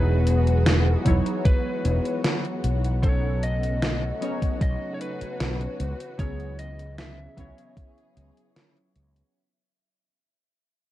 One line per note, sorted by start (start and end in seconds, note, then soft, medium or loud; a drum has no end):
0.00 0.95 E1 loud
0.00 2.99 E3 medium
0.00 1.01 F#3 medium
0.00 3.00 G#3 medium
0.00 1.01 B3 medium
0.00 9.31 B3 medium
0.00 1.01 D#4 medium
0.00 1.02 E4 medium
0.00 2.99 F#4 medium
0.00 1.02 G#4 loud
0.00 1.02 B4 medium
0.00 9.31 F#5 medium
0.27 closed hi-hat medium
0.47 closed hi-hat soft
0.66 snare loud
0.66 closed hi-hat medium
1.04 1.19 E1 medium
1.04 2.98 F#3 loud
1.04 2.98 B3 medium
1.04 2.99 D#4 medium
1.04 2.99 E4 medium
1.04 2.99 C#5 loud
1.04 kick medium
1.04 closed hi-hat medium
1.26 closed hi-hat medium
1.45 2.20 B4 loud
1.45 kick loud
1.45 closed hi-hat medium
1.85 1.98 E1 loud
1.85 closed hi-hat medium
2.05 closed hi-hat soft
2.24 snare loud
2.24 closed hi-hat medium
2.45 closed hi-hat soft
2.64 4.10 B1 medium
2.64 closed hi-hat medium
2.85 closed hi-hat soft
3.02 5.77 C#3 medium
3.02 4.16 F#3 medium
3.02 5.77 A3 medium
3.02 4.17 B3 medium
3.02 4.17 C#4 medium
3.02 4.18 D#4 medium
3.02 7.34 F#4 medium
3.02 4.18 A4 loud
3.02 3.44 C#5 loud
3.02 kick loud
3.02 closed hi-hat medium
3.43 4.61 D#5 loud
3.43 closed hi-hat medium
3.63 closed hi-hat medium
3.82 snare loud
3.82 closed hi-hat medium
4.20 5.77 F#3 loud
4.20 5.77 B3 medium
4.20 5.77 C#4 medium
4.20 5.78 D#4 medium
4.20 5.78 C#5 loud
4.20 closed hi-hat medium
4.42 kick medium
4.42 closed hi-hat medium
4.61 4.74 B1 loud
4.61 4.92 D#5 loud
4.61 kick loud
4.61 closed hi-hat medium
4.94 5.01 C#5 medium
5.01 6.19 B4 loud
5.01 closed hi-hat medium
5.21 muted fretless electric bass stroke soft
5.21 closed hi-hat medium
5.40 5.65 B1 medium
5.40 snare loud
5.40 closed hi-hat medium
5.61 closed hi-hat soft
5.80 5.92 C#2 medium
5.80 9.32 C#3 medium
5.80 9.31 E3 medium
5.80 closed hi-hat medium
6.00 closed hi-hat medium
6.18 7.26 C#2 loud
6.18 7.32 F#3 medium
6.18 7.33 B3 medium
6.18 7.33 C#4 medium
6.18 7.33 E4 medium
6.18 7.34 G#4 loud
6.18 6.60 C#5 loud
6.18 kick loud
6.18 closed hi-hat medium
6.40 closed hi-hat soft
6.59 6.95 D#5 loud
6.59 closed hi-hat medium
6.79 closed hi-hat medium
6.98 8.52 E5 loud
6.98 snare loud
6.98 closed hi-hat medium
7.36 7.50 C#2 medium
7.36 9.30 F#3 loud
7.36 9.30 B3 medium
7.36 9.30 C#4 medium
7.36 9.31 E4 medium
7.36 9.33 G#4 medium
7.36 9.31 C#5 loud
7.36 kick medium
7.36 closed hi-hat medium
7.58 closed hi-hat medium
7.77 kick loud
7.77 closed hi-hat medium
7.98 closed hi-hat soft
8.17 8.29 C#2 loud
8.17 closed hi-hat medium
8.37 closed hi-hat medium
8.56 snare loud
8.56 closed hi-hat medium
8.77 closed hi-hat soft
8.96 9.21 C#2 medium
8.96 closed hi-hat medium
9.16 closed hi-hat medium